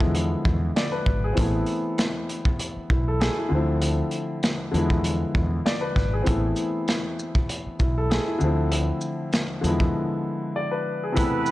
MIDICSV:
0, 0, Header, 1, 6, 480
1, 0, Start_track
1, 0, Key_signature, 0, "minor"
1, 0, Tempo, 612245
1, 1078, Time_signature, 4, 2, 24, 8
1, 9025, End_track
2, 0, Start_track
2, 0, Title_t, "Horn section"
2, 0, Program_c, 0, 61
2, 8754, Note_on_c, 0, 59, 101
2, 8754, Note_on_c, 0, 60, 90
2, 8754, Note_on_c, 0, 64, 93
2, 8754, Note_on_c, 0, 71, 110
2, 9025, Note_off_c, 0, 59, 0
2, 9025, Note_off_c, 0, 60, 0
2, 9025, Note_off_c, 0, 64, 0
2, 9025, Note_off_c, 0, 71, 0
2, 9025, End_track
3, 0, Start_track
3, 0, Title_t, "Grand piano"
3, 0, Program_c, 1, 0
3, 0, Note_on_c, 1, 50, 73
3, 0, Note_on_c, 1, 53, 68
3, 0, Note_on_c, 1, 56, 68
3, 0, Note_on_c, 1, 59, 63
3, 0, Note_on_c, 1, 64, 84
3, 9, Control_c, 1, 64, 127
3, 598, Note_on_c, 1, 74, 64
3, 721, Note_on_c, 1, 71, 70
3, 722, Note_off_c, 1, 74, 0
3, 953, Note_off_c, 1, 71, 0
3, 973, Note_on_c, 1, 68, 64
3, 1044, Note_off_c, 1, 50, 0
3, 1045, Note_on_c, 1, 60, 72
3, 1051, Note_off_c, 1, 53, 0
3, 1058, Note_off_c, 1, 56, 0
3, 1058, Note_on_c, 1, 52, 67
3, 1065, Note_off_c, 1, 59, 0
3, 1071, Note_on_c, 1, 57, 67
3, 1073, Note_off_c, 1, 64, 0
3, 1087, Note_on_c, 1, 59, 73
3, 1088, Control_c, 1, 64, 0
3, 1100, Note_on_c, 1, 64, 84
3, 1199, Note_off_c, 1, 68, 0
3, 1223, Control_c, 1, 64, 127
3, 2261, Note_off_c, 1, 64, 0
3, 2273, Note_on_c, 1, 64, 62
3, 2399, Note_off_c, 1, 64, 0
3, 2415, Note_on_c, 1, 69, 71
3, 2511, Note_on_c, 1, 68, 72
3, 2516, Note_off_c, 1, 69, 0
3, 2638, Note_off_c, 1, 68, 0
3, 2652, Note_on_c, 1, 64, 69
3, 2710, Note_off_c, 1, 60, 0
3, 2717, Note_off_c, 1, 52, 0
3, 2723, Note_off_c, 1, 57, 0
3, 2731, Note_off_c, 1, 59, 0
3, 2735, Note_on_c, 1, 50, 76
3, 2748, Note_on_c, 1, 52, 57
3, 2761, Note_on_c, 1, 57, 69
3, 2770, Control_c, 1, 64, 0
3, 2776, Note_on_c, 1, 60, 73
3, 2778, Note_off_c, 1, 64, 0
3, 2790, Note_on_c, 1, 64, 80
3, 2799, Note_on_c, 1, 53, 69
3, 2808, Note_off_c, 1, 52, 0
3, 2921, Control_c, 1, 64, 127
3, 3684, Note_off_c, 1, 50, 0
3, 3696, Note_on_c, 1, 50, 76
3, 3698, Note_off_c, 1, 53, 0
3, 3701, Note_off_c, 1, 57, 0
3, 3708, Note_off_c, 1, 60, 0
3, 3709, Note_on_c, 1, 53, 69
3, 3715, Note_off_c, 1, 64, 0
3, 3723, Note_on_c, 1, 56, 69
3, 3729, Control_c, 1, 64, 0
3, 3737, Note_on_c, 1, 59, 67
3, 3751, Note_on_c, 1, 64, 85
3, 3884, Control_c, 1, 64, 127
3, 4435, Note_on_c, 1, 74, 66
3, 4556, Note_on_c, 1, 71, 71
3, 4561, Note_off_c, 1, 74, 0
3, 4790, Note_off_c, 1, 71, 0
3, 4810, Note_on_c, 1, 68, 66
3, 4879, Note_on_c, 1, 60, 73
3, 4883, Note_off_c, 1, 50, 0
3, 4890, Note_off_c, 1, 53, 0
3, 4893, Note_on_c, 1, 52, 69
3, 4897, Note_off_c, 1, 56, 0
3, 4904, Note_off_c, 1, 59, 0
3, 4906, Note_on_c, 1, 57, 70
3, 4911, Note_off_c, 1, 64, 0
3, 4920, Note_on_c, 1, 59, 72
3, 4929, Control_c, 1, 64, 0
3, 4934, Note_on_c, 1, 64, 84
3, 5038, Note_off_c, 1, 68, 0
3, 5046, Control_c, 1, 64, 127
3, 6099, Note_off_c, 1, 64, 0
3, 6110, Note_on_c, 1, 64, 64
3, 6238, Note_off_c, 1, 64, 0
3, 6255, Note_on_c, 1, 69, 73
3, 6351, Note_on_c, 1, 68, 71
3, 6356, Note_off_c, 1, 69, 0
3, 6478, Note_off_c, 1, 68, 0
3, 6490, Note_on_c, 1, 64, 68
3, 6547, Note_off_c, 1, 60, 0
3, 6554, Note_off_c, 1, 52, 0
3, 6561, Note_off_c, 1, 57, 0
3, 6568, Note_off_c, 1, 59, 0
3, 6574, Note_on_c, 1, 50, 76
3, 6588, Note_on_c, 1, 52, 54
3, 6602, Note_on_c, 1, 57, 69
3, 6610, Control_c, 1, 64, 0
3, 6616, Note_on_c, 1, 60, 73
3, 6618, Note_off_c, 1, 64, 0
3, 6629, Note_on_c, 1, 64, 82
3, 6639, Note_on_c, 1, 53, 67
3, 6648, Note_off_c, 1, 52, 0
3, 6763, Control_c, 1, 64, 127
3, 7524, Note_off_c, 1, 50, 0
3, 7536, Note_on_c, 1, 50, 73
3, 7538, Note_off_c, 1, 53, 0
3, 7541, Note_off_c, 1, 57, 0
3, 7548, Note_off_c, 1, 60, 0
3, 7550, Note_on_c, 1, 53, 70
3, 7555, Note_off_c, 1, 64, 0
3, 7565, Note_on_c, 1, 56, 67
3, 7568, Control_c, 1, 64, 0
3, 7578, Note_on_c, 1, 59, 65
3, 7592, Note_on_c, 1, 64, 85
3, 7693, Control_c, 1, 64, 127
3, 8277, Note_on_c, 1, 74, 64
3, 8400, Note_on_c, 1, 71, 69
3, 8402, Note_off_c, 1, 74, 0
3, 8632, Note_off_c, 1, 71, 0
3, 8651, Note_on_c, 1, 68, 67
3, 8719, Note_on_c, 1, 48, 73
3, 8723, Note_off_c, 1, 50, 0
3, 8730, Note_off_c, 1, 53, 0
3, 8733, Note_on_c, 1, 52, 69
3, 8738, Note_off_c, 1, 56, 0
3, 8744, Note_off_c, 1, 59, 0
3, 8746, Note_on_c, 1, 57, 70
3, 8752, Note_off_c, 1, 64, 0
3, 8760, Note_on_c, 1, 59, 74
3, 8769, Control_c, 1, 64, 0
3, 8774, Note_on_c, 1, 64, 85
3, 8878, Note_off_c, 1, 68, 0
3, 8910, Control_c, 1, 64, 127
3, 9025, Note_off_c, 1, 48, 0
3, 9025, Note_off_c, 1, 52, 0
3, 9025, Note_off_c, 1, 57, 0
3, 9025, Note_off_c, 1, 59, 0
3, 9025, Note_off_c, 1, 64, 0
3, 9025, End_track
4, 0, Start_track
4, 0, Title_t, "Fretless electric bass"
4, 0, Program_c, 2, 35
4, 0, Note_on_c, 2, 40, 98
4, 264, Note_off_c, 2, 40, 0
4, 354, Note_on_c, 2, 40, 87
4, 548, Note_off_c, 2, 40, 0
4, 834, Note_on_c, 2, 32, 83
4, 1028, Note_off_c, 2, 32, 0
4, 1079, Note_on_c, 2, 33, 104
4, 1271, Note_off_c, 2, 33, 0
4, 2274, Note_on_c, 2, 35, 89
4, 2573, Note_off_c, 2, 35, 0
4, 2757, Note_on_c, 2, 38, 102
4, 3143, Note_off_c, 2, 38, 0
4, 3717, Note_on_c, 2, 40, 106
4, 4103, Note_off_c, 2, 40, 0
4, 4193, Note_on_c, 2, 40, 89
4, 4388, Note_off_c, 2, 40, 0
4, 4673, Note_on_c, 2, 32, 83
4, 4868, Note_off_c, 2, 32, 0
4, 4918, Note_on_c, 2, 33, 102
4, 5111, Note_off_c, 2, 33, 0
4, 6115, Note_on_c, 2, 35, 88
4, 6413, Note_off_c, 2, 35, 0
4, 6597, Note_on_c, 2, 38, 97
4, 6983, Note_off_c, 2, 38, 0
4, 7557, Note_on_c, 2, 40, 111
4, 7750, Note_off_c, 2, 40, 0
4, 9025, End_track
5, 0, Start_track
5, 0, Title_t, "Muted fretless electric bass strokes"
5, 2168, Note_on_c, 9, 29, 50
5, 2247, Note_off_c, 9, 29, 0
5, 6009, Note_on_c, 9, 29, 50
5, 6087, Note_off_c, 9, 29, 0
5, 9025, End_track
6, 0, Start_track
6, 0, Title_t, "Drums"
6, 4, Note_on_c, 9, 36, 100
6, 82, Note_off_c, 9, 36, 0
6, 115, Note_on_c, 9, 42, 97
6, 193, Note_off_c, 9, 42, 0
6, 354, Note_on_c, 9, 36, 103
6, 433, Note_off_c, 9, 36, 0
6, 598, Note_on_c, 9, 42, 72
6, 602, Note_on_c, 9, 38, 108
6, 677, Note_off_c, 9, 42, 0
6, 680, Note_off_c, 9, 38, 0
6, 834, Note_on_c, 9, 36, 93
6, 912, Note_off_c, 9, 36, 0
6, 1073, Note_on_c, 9, 42, 102
6, 1079, Note_on_c, 9, 36, 102
6, 1151, Note_off_c, 9, 42, 0
6, 1157, Note_off_c, 9, 36, 0
6, 1304, Note_on_c, 9, 42, 48
6, 1383, Note_off_c, 9, 42, 0
6, 1553, Note_on_c, 9, 42, 80
6, 1560, Note_on_c, 9, 38, 109
6, 1631, Note_off_c, 9, 42, 0
6, 1639, Note_off_c, 9, 38, 0
6, 1798, Note_on_c, 9, 42, 59
6, 1876, Note_off_c, 9, 42, 0
6, 1923, Note_on_c, 9, 36, 98
6, 2001, Note_off_c, 9, 36, 0
6, 2033, Note_on_c, 9, 42, 94
6, 2112, Note_off_c, 9, 42, 0
6, 2274, Note_on_c, 9, 36, 104
6, 2352, Note_off_c, 9, 36, 0
6, 2518, Note_on_c, 9, 42, 71
6, 2521, Note_on_c, 9, 38, 115
6, 2596, Note_off_c, 9, 42, 0
6, 2600, Note_off_c, 9, 38, 0
6, 2992, Note_on_c, 9, 42, 100
6, 3070, Note_off_c, 9, 42, 0
6, 3223, Note_on_c, 9, 42, 51
6, 3302, Note_off_c, 9, 42, 0
6, 3471, Note_on_c, 9, 42, 78
6, 3479, Note_on_c, 9, 38, 111
6, 3550, Note_off_c, 9, 42, 0
6, 3558, Note_off_c, 9, 38, 0
6, 3718, Note_on_c, 9, 42, 58
6, 3796, Note_off_c, 9, 42, 0
6, 3843, Note_on_c, 9, 36, 96
6, 3921, Note_off_c, 9, 36, 0
6, 3953, Note_on_c, 9, 42, 96
6, 4031, Note_off_c, 9, 42, 0
6, 4193, Note_on_c, 9, 36, 100
6, 4272, Note_off_c, 9, 36, 0
6, 4438, Note_on_c, 9, 42, 70
6, 4442, Note_on_c, 9, 38, 113
6, 4517, Note_off_c, 9, 42, 0
6, 4520, Note_off_c, 9, 38, 0
6, 4673, Note_on_c, 9, 36, 95
6, 4681, Note_on_c, 9, 38, 41
6, 4751, Note_off_c, 9, 36, 0
6, 4760, Note_off_c, 9, 38, 0
6, 4911, Note_on_c, 9, 42, 99
6, 4918, Note_on_c, 9, 36, 105
6, 4990, Note_off_c, 9, 42, 0
6, 4997, Note_off_c, 9, 36, 0
6, 5144, Note_on_c, 9, 42, 50
6, 5144, Note_on_c, 9, 82, 50
6, 5222, Note_off_c, 9, 42, 0
6, 5222, Note_off_c, 9, 82, 0
6, 5392, Note_on_c, 9, 42, 79
6, 5400, Note_on_c, 9, 38, 106
6, 5470, Note_off_c, 9, 42, 0
6, 5478, Note_off_c, 9, 38, 0
6, 5638, Note_on_c, 9, 82, 59
6, 5717, Note_off_c, 9, 82, 0
6, 5763, Note_on_c, 9, 36, 100
6, 5841, Note_off_c, 9, 36, 0
6, 5875, Note_on_c, 9, 42, 96
6, 5953, Note_off_c, 9, 42, 0
6, 6113, Note_on_c, 9, 82, 55
6, 6114, Note_on_c, 9, 36, 97
6, 6191, Note_off_c, 9, 82, 0
6, 6193, Note_off_c, 9, 36, 0
6, 6360, Note_on_c, 9, 42, 70
6, 6364, Note_on_c, 9, 38, 109
6, 6438, Note_off_c, 9, 42, 0
6, 6442, Note_off_c, 9, 38, 0
6, 6590, Note_on_c, 9, 82, 52
6, 6668, Note_off_c, 9, 82, 0
6, 6834, Note_on_c, 9, 42, 103
6, 6912, Note_off_c, 9, 42, 0
6, 7064, Note_on_c, 9, 82, 48
6, 7143, Note_off_c, 9, 82, 0
6, 7312, Note_on_c, 9, 42, 78
6, 7320, Note_on_c, 9, 38, 109
6, 7390, Note_off_c, 9, 42, 0
6, 7398, Note_off_c, 9, 38, 0
6, 7558, Note_on_c, 9, 42, 57
6, 7558, Note_on_c, 9, 82, 58
6, 7637, Note_off_c, 9, 42, 0
6, 7637, Note_off_c, 9, 82, 0
6, 7684, Note_on_c, 9, 36, 97
6, 7762, Note_off_c, 9, 36, 0
6, 8754, Note_on_c, 9, 42, 102
6, 8760, Note_on_c, 9, 36, 104
6, 8832, Note_off_c, 9, 42, 0
6, 8838, Note_off_c, 9, 36, 0
6, 8985, Note_on_c, 9, 82, 51
6, 9025, Note_off_c, 9, 82, 0
6, 9025, End_track
0, 0, End_of_file